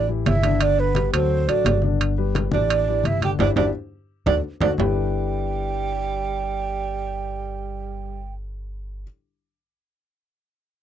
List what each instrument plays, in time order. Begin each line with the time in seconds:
Already playing: upright bass A1
0.08 grand piano E3 E4 G4, high conga
0.26 upright bass G1, tenor saxophone E4, flute E5, high conga, high timbale, low timbale
0.42 grand piano D3 D4 D5, high conga, high timbale
0.60 grand piano D3 D4 D5, tenor saxophone D4, flute D5, high conga, high timbale
0.77 tenor saxophone B3, flute B4, high conga
0.95 grand piano G3 G4 B4, high conga, high timbale
1.12 upright bass D2, grand piano F#3 F#4 A4, tenor saxophone C4, flute C5, high conga, high timbale
1.29 high conga
1.47 upright bass A1, grand piano F#3 F#4 A4, tenor saxophone D4, flute D5, high conga, high timbale
1.65 upright bass G1, high conga, high timbale, low timbale
1.82 grand piano D3 D4 D5, high conga
2.00 high conga, high timbale
2.17 grand piano G3 G4 B4, high conga
2.35 high conga, high timbale
2.52 upright bass A1, grand piano E3 E4 G4, tenor saxophone D4, flute D5, high conga
2.70 high conga, high timbale
2.87 grand piano E3 E4 G4, high conga
3.04 upright bass G1, tenor saxophone E4, flute E5, high conga, high timbale
3.22 grand piano D3 D4 D5, tenor saxophone G4, flute G5, high conga, high timbale
3.39 upright bass G1, grand piano D4 E4 G4, tenor saxophone D4, flute D5, low conga, high timbale
3.56 upright bass G1, tenor saxophone D4, grand piano D4 E4 G4, flute D5, low conga, high timbale
4.26 upright bass D2, grand piano D4 F#4 A4, tenor saxophone D4, flute D5, low conga, high timbale
4.61 upright bass D2, grand piano D4 F#4 A4, tenor saxophone D4, flute D5, low conga, high timbale
4.78 upright bass G1, grand piano G3 D4 E4 G4 A4 B4, tenor saxophone G3, flute G5, low conga, low timbale